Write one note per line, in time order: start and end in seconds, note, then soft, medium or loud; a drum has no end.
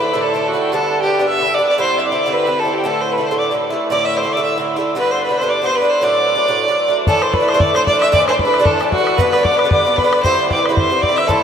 0.00 0.14 D3 soft
0.00 0.13 A3 soft
0.00 0.12 E4 medium
0.00 0.23 B4 medium
0.00 0.23 B5 medium
0.13 0.32 A2 medium
0.13 0.34 D3 medium
0.13 0.34 A3 medium
0.13 0.35 E4 medium
0.21 0.50 A4 medium
0.21 0.49 A5 medium
0.34 0.54 A2 soft
0.34 0.54 D3 medium
0.34 0.53 A3 medium
0.34 0.52 E4 medium
0.48 0.76 F#4 medium
0.48 0.63 F#5 medium
0.53 0.72 D3 soft
0.53 0.73 A3 soft
0.53 0.73 E4 medium
0.61 0.74 G5 medium
0.72 1.07 G2 medium
0.72 1.08 D3 medium
0.72 1.06 B3 medium
0.72 1.05 D4 medium
0.72 1.01 A4 loud
0.72 1.02 A5 medium
1.01 1.25 G4 medium
1.01 1.26 G5 medium
1.06 1.20 D3 soft
1.06 1.19 B3 soft
1.06 1.18 D4 medium
1.19 1.39 G2 medium
1.19 1.40 D3 medium
1.19 1.41 B3 medium
1.19 1.41 D4 medium
1.27 1.55 E5 loud
1.27 1.49 E6 medium
1.40 1.60 G2 soft
1.40 1.60 D3 medium
1.40 1.59 B3 medium
1.40 1.57 D4 medium
1.51 1.68 D5 loud
1.51 1.64 D6 medium
1.51 1.55 E6 medium
1.59 1.77 D3 soft
1.59 1.79 B3 soft
1.59 1.79 D4 medium
1.65 1.79 D6 medium
1.65 1.69 E6 medium
1.69 1.79 D5 medium
1.78 2.12 G2 medium
1.78 2.15 D3 medium
1.78 2.13 C4 medium
1.78 2.12 E4 medium
1.78 2.00 C5 loud
1.78 1.98 C6 medium
1.99 2.08 E5 medium
2.05 2.34 D5 medium
2.05 2.30 D6 medium
2.12 2.26 D3 soft
2.12 2.26 C4 soft
2.12 2.25 E4 medium
2.26 2.45 G2 medium
2.26 2.46 D3 medium
2.26 2.47 C4 medium
2.26 2.47 E4 medium
2.32 2.61 B4 loud
2.32 2.61 B5 medium
2.46 2.66 G2 soft
2.46 2.66 D3 medium
2.46 2.65 C4 medium
2.46 2.64 E4 soft
2.59 2.75 A4 medium
2.59 2.76 A5 medium
2.65 2.84 D3 soft
2.65 2.85 C4 soft
2.65 2.85 E4 soft
2.73 2.87 G4 medium
2.73 2.89 G5 medium
2.84 3.18 A2 medium
2.84 3.21 D3 medium
2.84 3.18 A3 medium
2.84 3.16 E4 medium
2.84 3.02 A4 loud
2.84 3.02 A5 medium
3.01 3.13 C5 medium
3.01 3.16 C6 medium
3.12 3.27 B4 medium
3.12 3.30 B5 medium
3.18 3.31 D3 soft
3.18 3.30 A3 soft
3.18 3.30 E4 soft
3.26 3.37 C5 medium
3.26 3.40 C6 medium
3.31 3.50 A2 soft
3.31 3.51 D3 soft
3.31 3.52 A3 medium
3.31 3.52 E4 medium
3.38 3.51 D5 medium
3.38 3.53 D6 medium
3.51 3.71 A2 medium
3.51 3.71 D3 medium
3.51 3.71 A3 medium
3.51 3.69 E4 medium
3.70 3.90 D3 medium
3.70 3.91 A3 medium
3.70 3.90 E4 medium
3.90 4.24 A2 medium
3.90 4.26 D3 medium
3.90 4.24 A3 medium
3.90 4.22 E4 medium
3.90 4.07 D5 loud
3.90 4.07 D6 medium
4.05 4.19 E5 medium
4.05 4.19 E6 medium
4.17 4.34 C5 medium
4.17 4.35 C6 medium
4.23 4.37 D3 soft
4.23 4.37 A3 soft
4.23 4.36 E4 soft
4.32 4.42 D5 medium
4.32 4.44 D6 medium
4.37 4.56 A2 medium
4.37 4.58 D3 medium
4.37 4.58 A3 medium
4.37 4.58 E4 medium
4.43 4.57 E5 medium
4.43 4.58 E6 medium
4.58 4.77 A2 medium
4.58 4.78 D3 soft
4.58 4.77 A3 medium
4.58 4.75 E4 medium
4.76 4.95 D3 soft
4.76 4.96 A3 medium
4.76 4.96 E4 medium
4.95 5.29 G2 medium
4.95 5.31 D3 medium
4.95 5.29 B3 medium
4.95 5.28 D4 medium
4.95 5.13 B4 medium
4.95 5.11 B5 medium
5.11 5.23 C5 medium
5.11 5.26 C6 medium
5.24 5.38 B4 medium
5.24 5.41 B5 medium
5.29 5.42 D3 soft
5.29 5.42 B3 medium
5.29 5.40 D4 soft
5.37 5.50 C5 medium
5.37 5.52 C6 medium
5.41 5.61 G2 medium
5.41 5.62 D3 medium
5.41 5.63 B3 medium
5.41 5.63 D4 medium
5.49 5.63 D5 medium
5.49 5.67 D6 medium
5.62 5.82 G2 medium
5.62 5.83 D3 medium
5.62 5.83 B3 medium
5.62 5.81 D4 medium
5.62 5.77 C5 loud
5.62 5.79 C6 medium
5.75 5.91 B4 medium
5.75 6.06 B5 medium
5.82 6.02 D3 soft
5.82 6.02 B3 medium
5.82 6.01 D4 medium
5.89 6.05 C5 loud
6.01 6.35 A2 medium
6.01 6.36 F#3 medium
6.01 6.36 A3 medium
6.01 6.35 D4 medium
6.01 6.96 D5 loud
6.01 6.97 D6 medium
6.35 6.49 F#3 soft
6.35 6.48 A3 soft
6.35 6.47 D4 medium
6.48 6.67 A2 medium
6.48 6.68 F#3 medium
6.48 6.69 A3 medium
6.48 6.69 D4 medium
6.68 6.88 A2 medium
6.68 6.88 F#3 medium
6.68 6.89 A3 medium
6.68 6.87 D4 medium
6.88 7.08 F#3 soft
6.88 7.08 A3 medium
6.88 7.07 D4 medium
7.07 7.41 A2 medium
7.07 7.42 E3 medium
7.07 7.41 A3 medium
7.07 7.40 D4 medium
7.07 7.24 A4 loud
7.07 7.24 A5 medium
7.07 bodhran medium
7.22 7.35 C5 medium
7.22 7.36 C6 medium
7.22 bodhran medium
7.34 7.50 B4 medium
7.34 7.50 B5 medium
7.34 bodhran medium
7.41 7.54 E3 soft
7.41 7.54 A3 soft
7.41 7.53 D4 medium
7.48 7.62 C5 loud
7.48 7.62 C6 medium
7.48 bodhran medium
7.54 7.73 A2 medium
7.54 7.74 E3 medium
7.54 7.75 A3 medium
7.54 7.75 D4 medium
7.60 7.73 D5 loud
7.60 7.78 D6 medium
7.60 bodhran medium
7.74 7.93 A2 soft
7.74 7.94 E3 medium
7.74 7.93 A3 medium
7.74 7.91 D4 medium
7.74 7.85 C5 loud
7.74 7.87 C6 medium
7.74 bodhran medium
7.86 8.00 D5 loud
7.86 8.01 D6 medium
7.86 bodhran medium
7.93 8.12 E3 soft
7.93 8.12 A3 soft
7.93 8.12 D4 soft
8.00 8.09 E5 loud
8.00 8.15 E6 medium
8.00 bodhran medium
8.09 8.46 A2 medium
8.09 8.47 E3 medium
8.09 8.27 D5 loud
8.09 8.14 E5 medium
8.13 8.46 A3 medium
8.13 8.45 D4 medium
8.13 8.27 D6 medium
8.13 bodhran medium
8.27 8.38 C5 medium
8.27 8.42 C6 medium
8.27 bodhran medium
8.39 8.66 B4 loud
8.39 8.68 B5 medium
8.39 bodhran medium
8.45 8.60 E3 soft
8.45 8.59 A3 medium
8.45 8.58 D4 soft
8.54 bodhran medium
8.60 8.78 A2 medium
8.60 8.79 E3 medium
8.60 8.81 A3 medium
8.60 8.80 D4 medium
8.65 8.90 A4 loud
8.65 8.94 A5 medium
8.65 bodhran medium
8.79 8.99 A2 medium
8.79 9.00 E3 medium
8.79 8.99 A3 medium
8.79 8.97 D4 medium
8.79 bodhran medium
8.91 9.18 F#4 loud
8.91 9.18 F#5 medium
8.91 bodhran medium
8.98 9.19 E3 soft
8.98 9.19 A3 soft
8.98 9.18 D4 medium
9.07 bodhran medium
9.17 9.52 G2 medium
9.17 9.54 D3 medium
9.17 9.52 B3 medium
9.17 9.31 B4 loud
9.17 9.47 B5 medium
9.17 bodhran medium
9.21 9.51 D4 medium
9.31 9.44 B4 medium
9.31 bodhran medium
9.43 9.58 D5 medium
9.43 9.71 D6 medium
9.43 bodhran medium
9.52 9.65 D3 soft
9.52 9.64 B3 soft
9.52 9.63 D4 soft
9.57 9.71 B4 medium
9.57 bodhran medium
9.64 9.84 G2 medium
9.64 9.85 D3 medium
9.64 9.86 B3 medium
9.64 9.85 D4 medium
9.69 9.98 D5 loud
9.69 10.00 D6 medium
9.69 bodhran medium
9.85 10.04 G2 medium
9.85 10.05 D3 medium
9.85 10.05 B3 medium
9.85 10.03 D4 medium
9.96 10.22 B4 loud
9.96 10.26 B5 medium
9.96 bodhran medium
10.04 10.23 D3 soft
10.04 10.25 B3 soft
10.04 10.24 D4 medium
10.13 bodhran medium
10.23 10.57 G2 medium
10.23 10.59 D3 medium
10.23 10.57 C4 medium
10.23 10.56 E4 medium
10.23 10.48 C5 loud
10.23 10.51 C6 medium
10.23 bodhran medium
10.49 10.64 D5 medium
10.49 10.68 D6 medium
10.49 bodhran medium
10.56 10.70 D3 soft
10.56 10.69 C4 soft
10.56 10.68 E4 medium
10.63 10.73 B4 medium
10.63 10.77 B5 medium
10.63 bodhran medium
10.69 10.88 G2 soft
10.69 10.90 D3 medium
10.69 10.91 C4 medium
10.69 10.90 E4 medium
10.74 11.03 C5 medium
10.74 bodhran medium
10.79 11.04 C6 medium
10.90 11.10 G2 medium
10.90 11.10 D3 soft
10.90 11.09 C4 medium
10.90 11.08 E4 medium
11.01 11.18 D5 loud
11.01 11.20 D6 medium
11.01 bodhran medium
11.09 11.28 D3 soft
11.09 11.29 C4 soft
11.09 11.29 E4 medium
11.16 11.29 E5 medium
11.16 11.32 E6 medium
11.16 bodhran medium
11.27 11.43 A2 medium
11.27 11.43 D3 medium
11.27 11.43 A3 medium
11.27 11.43 E4 medium
11.27 11.43 A4 loud
11.27 11.43 A5 medium
11.27 bodhran medium